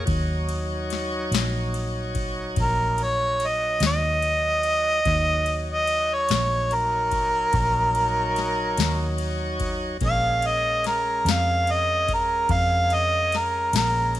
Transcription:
0.05 1.29 D#2 medium
0.05 5.00 F#3 medium
0.05 5.01 D#4 medium
0.05 5.01 C#5 medium
0.05 kick loud
0.05 ride medium
0.49 ride medium
0.90 snare soft
0.90 ride medium
1.31 2.53 A#1 medium
1.31 snare loud
1.31 ride medium
1.74 ride medium
2.15 kick medium
2.15 ride medium
2.56 3.78 A#1 medium
2.56 kick loud
2.56 ride medium
2.62 3.05 A#4 medium
2.98 ride medium
3.03 3.49 C#5 medium
3.40 ride medium
3.47 3.84 D#5 medium
3.80 5.01 D#2 medium
3.80 snare loud
3.80 ride medium
3.86 5.66 D#5 loud
4.22 ride medium
4.63 ride medium
5.05 6.26 D#2 medium
5.05 9.98 F#3 medium
5.05 9.97 D#4 medium
5.05 9.97 C#5 medium
5.05 kick loud
5.05 ride medium
5.46 ride medium
5.72 6.16 D#5 medium
5.87 ride medium
6.14 6.76 C#5 medium
6.29 7.50 A#1 medium
6.29 snare loud
6.29 ride medium
6.71 9.17 A#4 loud
6.71 ride medium
7.11 kick medium
7.11 ride medium
7.53 8.74 A#1 loud
7.53 kick loud
7.53 ride medium
7.95 ride medium
8.36 snare soft
8.36 ride medium
8.78 9.98 D#2 medium
8.78 snare loud
8.78 ride medium
9.18 ride medium
9.60 kick medium
9.60 ride medium
10.01 11.21 A#1 medium
10.01 14.20 G#3 medium
10.01 14.20 C#4 medium
10.01 14.20 A#4 medium
10.01 kick loud
10.01 ride medium
10.06 10.48 F5 loud
10.42 ride medium
10.47 10.85 D#5 medium
10.84 11.33 A#4 medium
10.84 snare soft
10.84 ride medium
11.25 12.45 F2 loud
11.25 snare loud
11.25 ride medium
11.31 11.73 F5 medium
11.67 ride medium
11.71 12.09 D#5 medium
12.08 kick medium
12.08 ride medium
12.14 12.54 A#4 medium
12.49 13.69 F2 medium
12.49 12.96 F5 loud
12.49 kick loud
12.49 ride medium
12.90 ride medium
12.94 13.39 D#5 medium
13.32 snare soft
13.32 ride medium
13.37 13.74 A#4 medium
13.73 14.20 A#1 loud
13.73 14.15 A#4 loud
13.73 snare loud
13.73 ride medium
14.15 ride medium

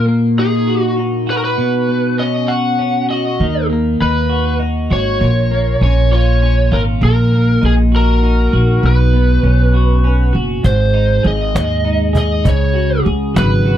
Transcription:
0.00 1.57 A#2 medium
0.06 1.64 A#3 soft
0.38 0.96 D#4 soft
0.38 0.82 G#4 medium
0.67 1.27 F#4 soft
0.82 0.95 F#4 medium
0.97 2.18 D#4 soft
1.27 2.48 F#4 medium
1.27 1.37 B4 medium
1.37 1.43 A#4 medium
1.44 2.22 B4 medium
1.58 3.40 B2 medium
1.89 3.46 B3 soft
2.19 2.78 C#4 soft
2.19 2.50 D#5 medium
2.48 3.09 F#4 soft
2.48 3.05 F#5 medium
2.79 3.46 C#4 soft
3.10 3.46 F#4 soft
3.10 3.66 D#5 medium
3.40 3.97 D#2 medium
3.40 5.21 D#3 medium
3.70 5.51 A#3 soft
4.01 4.87 D#2 medium
4.01 4.58 D#4 soft
4.01 4.57 B4 medium
4.30 4.89 F#4 soft
4.60 5.27 D#4 soft
4.91 5.19 G#1 medium
4.91 5.27 F#4 medium
4.91 5.82 C#5 medium
5.21 5.78 A#1 medium
5.21 7.00 A#2 medium
5.51 7.08 A#3 soft
5.81 6.68 A#1 medium
5.81 6.41 C#4 soft
5.81 6.12 C#5 medium
6.11 6.71 F4 soft
6.11 6.75 C#5 medium
6.43 7.09 C#4 soft
6.72 7.00 G#1 medium
6.72 7.08 F4 medium
6.72 6.81 A#4 medium
7.01 7.59 A#1 medium
7.01 8.82 A#2 medium
7.01 7.65 A#4 medium
7.32 8.89 A#3 soft
7.62 8.49 A#1 medium
7.62 8.22 D#4 soft
7.62 7.73 G#4 medium
7.92 8.53 F#4 soft
7.92 8.86 A#4 medium
8.23 9.43 D#4 soft
8.53 8.81 A#1 medium
8.53 8.89 F#4 medium
8.83 9.40 B1 medium
8.83 10.64 B2 medium
8.83 10.32 B4 medium
9.13 10.70 B3 soft
9.43 10.30 B1 medium
9.43 10.03 C#4 soft
9.74 10.32 F#4 medium
10.04 10.71 C#4 soft
10.33 10.63 F#1 medium
10.33 10.70 F#4 soft
10.63 11.21 G#1 medium
10.63 12.45 G#2 medium
10.63 11.27 C5 medium
10.63 cajon bass medium
10.94 11.84 D#4 soft
11.23 11.53 G#1 medium
11.23 12.13 G#4 medium
11.23 12.17 D#5 medium
11.23 cajon slap soft
11.55 12.42 D#2 medium
11.55 12.77 G#3 medium
11.55 cajon slap medium
11.85 12.51 D#4 soft
11.85 cajon slap soft
12.13 12.77 G#4 medium
12.13 cajon bass medium
12.18 12.48 D#5 medium
12.44 13.02 C#2 medium
12.44 13.78 C#3 medium
12.44 cajon bass medium
12.49 13.03 C#5 medium
12.74 13.65 F#4 soft
12.74 cajon slap soft
13.05 13.37 C#2 medium
13.05 13.78 G#4 medium
13.05 cajon slap soft
13.34 13.78 G#1 medium
13.34 13.78 F#3 medium
13.34 13.78 B4 medium
13.34 cajon slap medium
13.65 13.78 F#4 medium
13.65 cajon slap soft

